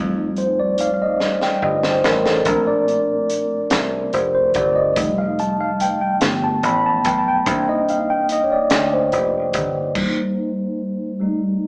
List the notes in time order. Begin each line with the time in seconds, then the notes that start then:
Already playing: F2 G3 A3 D#4
0.36 C5, closed hi-hat
0.60 D5
0.78 F5, closed hi-hat
0.94 F5
1.02 D#5
1.20 G2, snare
1.41 G5, snare
1.62 G1 D#5
1.83 C5, snare
2.04 A1 A#4, snare
2.25 A4, snare
2.45 A#1 A3 C4 D4 A#4, kick, closed hi-hat
2.67 D5
2.88 closed hi-hat
3.30 closed hi-hat
3.70 C2, snare, closed hi-hat
4.13 F1 C5, closed hi-hat
4.35 C5
4.54 G1 D5, kick, closed hi-hat
4.76 D#5
4.96 F1 G3 A3 D#4, kick, closed hi-hat
5.18 F5
5.39 A5, closed hi-hat
5.60 F5
5.80 G5, closed hi-hat
6.01 G5
6.20 G1 F3 A3 B3, snare, closed hi-hat
6.44 A5
6.63 A1 B5, closed hi-hat
6.86 A5
7.04 B1 G5, kick, closed hi-hat
7.19 A5
7.28 G5
7.46 C2 A#3 D4 D#4, kick, closed hi-hat
7.69 D#5
7.89 F5, closed hi-hat
8.10 G5
8.29 D#5, closed hi-hat
8.44 C#5
8.52 D5
8.70 D2, snare, closed hi-hat
8.93 C5
9.12 F1, closed hi-hat
9.53 G1, kick, closed hi-hat
9.95 G3 A#3 D#4, kick, crash
11.20 G3 A3 D#4